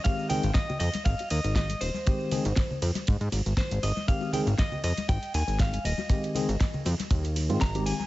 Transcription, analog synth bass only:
X:1
M:4/4
L:1/16
Q:"Swing 16ths" 1/4=119
K:Ab
V:1 name="Analog synth bass" clef=bass
z3 A,,, z2 F,, z A,,, z E,, A,,,2 z E,,, z | z3 A,,, z2 F,, z A,, A,, A,,, A,,, z A,,, A,,, z | z3 A,,, z2 F,, z A,,, z E,, A,,,2 z E,,, z | z3 A,,, z2 F,, z E,,3 A,, A,,,2 z2 |]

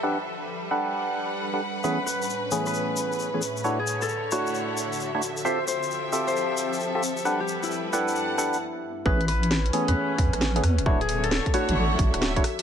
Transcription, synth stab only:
X:1
M:4/4
L:1/16
Q:"Swing 16ths" 1/4=133
K:A
V:1 name="Synth stab"
[D=GABf] z4 z [DGABf]6- [DGABf] [DGABf] z2 | [E,A,B,CG] z4 z [E,A,B,CG]6- [E,A,B,CG] [E,A,B,CG] z2 | [A,DEFc] z4 z [A,DEFc]6- [A,DEFc] [A,DEFc] z2 | [=C=F=GAe] z4 z [CFGAe]6- [CFGAe] [CFGAe] z2 |
[D=GABf] z4 z [DGABf]4 [DGABf]2 z4 | [E,A,B,CG] z4 z [E,A,B,CG]6- [E,A,B,CG] [E,A,B,CG] z2 | [A,DEFc] z4 z [A,DEFc]6- [A,DEFc] [A,DEFc] z2 |]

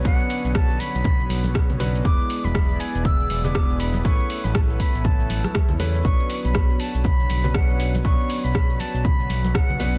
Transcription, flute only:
X:1
M:4/4
L:1/16
Q:"Swing 16ths" 1/4=120
K:Bm
V:1 name="Flute"
f4 a2 b6 z4 | d'3 b3 ^g2 e'3 d'3 b2 | c'3 b a2 b2 a6 z2 | c'3 b3 a2 b4 f3 z |
c'3 b3 a2 b4 f3 z |]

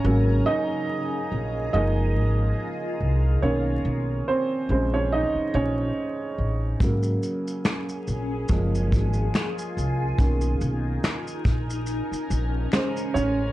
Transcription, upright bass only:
X:1
M:4/4
L:1/16
Q:"Swing 16ths" 1/4=71
K:Bbm
V:1 name="Upright bass" clef=bass
A,,,2 z4 B,,,2 G,,,2 A,,,2 z2 C,,2 | =B,,,2 B,,,2 z2 _B,,,3 z B,,,2 z2 =A,,,2 | A,,,2 z4 B,,,2 G,,,2 A,,,2 z2 C,,2 | =B,,,2 B,,,2 z2 _B,,,3 z B,,,2 z2 =A,,,2 |]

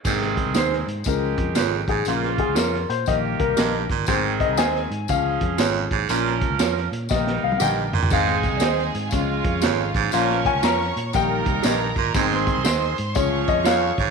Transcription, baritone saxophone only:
X:1
M:4/4
L:1/8
Q:"Swing" 1/4=119
K:Ab
V:1 name="Baritone saxophone" clef=bass
A,, z4 z F,, A,, | B,, z4 z G,, B,, | A,, z4 z F,, A,, | B,, z4 z G,, B,, |
A,, z4 z F,, A,, | B,, z4 z G,, B,, | A,, z4 z F,, A,, |]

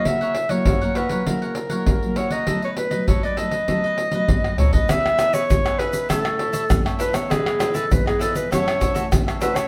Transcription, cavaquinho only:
X:1
M:4/4
L:1/16
Q:1/4=99
K:E
V:1 name="Cavaquinho"
[E^Acf] [Acf] z [Acf] [EAcf] [Acf] [EAcf] [Acf] [EAcf] [Acf] z [Acf]3 [EAcf] [Acf] | [ABd] [Bd] z [Bd] [ABd] [Bd] [ABd] [Bd] [ABd] [Bd] z [Bd]3 [ABd] [Bd] | [DGBe]2 [DGBe] [DGBe] z [GBe] [DGBe]2 [EAce] [Ace] [EAce] [EAce] z [Ace] [EAce] [Ace] | [EGBd]2 [EGBd] [EGBd] z [GBd] [EGBd]2 [FAce] [Ace] [FAce] [FAce] z [Ace] [FAce] [Ace] |]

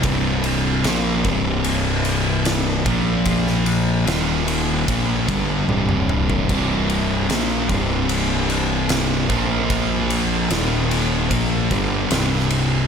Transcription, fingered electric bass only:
X:1
M:4/4
L:1/8
Q:1/4=75
K:Cm
V:1 name="Fingered electric bass" clef=bass
C,,,2 B,,, C,,,4 B,,,- | B,,,2 E,,,2 B,,, G,,, C,,,2 | C,,,2 B,,, C,,,4 B,,,- | B,,,2 E,,,2 B,,, G,,, C,,,2 |]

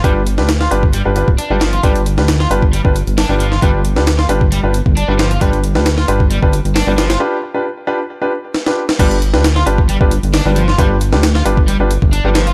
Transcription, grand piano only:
X:1
M:4/4
L:1/16
Q:1/4=134
K:Gmix
V:1 name="Grand piano"
[DFGB] z2 [DFGB] z2 [DFGB] z2 [DFGB] [DFGB] z2 [DFGB] z2 | [DFGB] z2 [DFGB] z2 [DFGB] z2 [DFGB] z3 [DFGB] z2 | [DFGB] z2 [DFGB] z2 [DFGB] z2 [DFGB] z3 [DFGB] z2 | [DFGB] z2 [DFGB] z2 [DFGB] z2 [DFGB] z3 [DFGB] z2 |
[DFGB] z2 [DFGB] z2 [DFGB] z2 [DFGB] z3 [DFGB] z2 | [DFGB] z2 [DFGB] z2 [DFGB] z2 [DFGB] z3 [DFGB] z2 | [DFGB] z2 [DFGB] z2 [DFGB] z2 [DFGB] z3 [DFGB] z2 |]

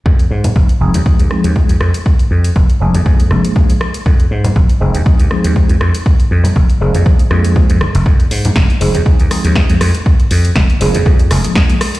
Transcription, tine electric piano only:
X:1
M:4/4
L:1/8
Q:"Swing 16ths" 1/4=120
K:Fdor
V:1 name="Tine electric piano"
z3 [F,A,CEA] [F,A,CEA] [F,A,CEA] [F,A,CEA] z | z3 [F,A,B,DA] [F,A,B,DA] [F,A,B,DA] [F,A,B,DA] z | z3 [F,A,CEA] [F,A,CEA] [F,A,CEA] [F,A,CEA] z | z3 [F,A,B,DA] [F,A,B,DA] [F,A,B,DA] [F,A,B,DA] z |
z3 [F,A,CEA] [F,A,CEA] [F,A,CEA] [F,A,CEA] z | z3 [F,A,B,DA] [F,A,B,DA] [F,A,B,DA] [F,A,B,DA] z |]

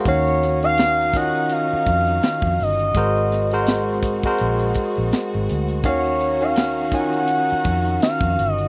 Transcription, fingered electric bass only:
X:1
M:4/4
L:1/16
Q:"Swing 16ths" 1/4=83
K:Ebdor
V:1 name="Fingered electric bass" clef=bass
E,,6- E,, z3 F,,2 z F,, =G,,,2 | A,,,6- A,,, z B,,,2 z B,,, z A,,, =D,,2 | E,,6- E,, z3 F,,2 z F,, =G,,,2 |]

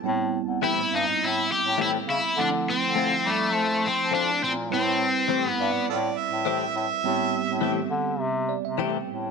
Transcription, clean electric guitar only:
X:1
M:4/4
L:1/8
Q:1/4=103
K:Am
V:1 name="Clean electric guitar"
z2 [E,A,CG] z3 [E,A,CG] z | z2 [A,CF] z3 [A,CF] z | z2 [E,A,CG] z3 [E,A,CG] z | z2 [E,A,CG] z3 [E,A,CG] z |]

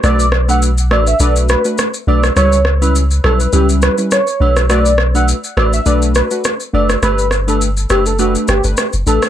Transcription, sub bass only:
X:1
M:4/4
L:1/16
Q:"Swing 16ths" 1/4=103
K:Bm
V:1 name="Sub bass" clef=bass
B,,,6 A,,,2 B,,,3 z3 B,,,2 | C,,6 B,,,2 C,,3 z3 B,,,2- | B,,,6 A,,,2 B,,,3 z3 F,,,2 | G,,,6 F,,,4 G,,, G,,, z F,,, A,,, z |]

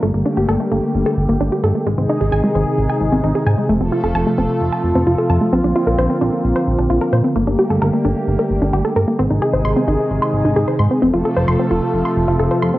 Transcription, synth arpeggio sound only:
X:1
M:4/4
L:1/16
Q:1/4=131
K:Gm
V:1 name="Synth arpeggio sound"
A, B, D G A A, B, z2 A z B, D G A A, | _A, C E _A _a A, C z2 a z C E A a A, | A, C F A a A, C z2 a z C F A a A, | C D F B c C D z2 c z D F B c C |
B, D G A B B, D z2 B z D G A B B, | C E _A c c' C E z2 c' z E A c c' C | C F A c c' C F z2 c' z F A c c' C |]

